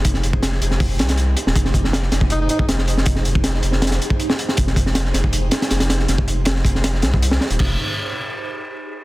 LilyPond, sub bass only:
\new Staff \with { instrumentName = "Sub bass" } { \clef bass \time 4/4 \key f \minor \tempo 4 = 159 f,,4. f,,4 c,4 r16 ees,,16 | f,,4. f,,4 r8 f,,4 | f,,4. f,,4 r4. | f,,4. f,,4 r8 f,,4 |
f,,4. f,,4 c,4 r16 ees,,16 | f,,8 r2. r8 | }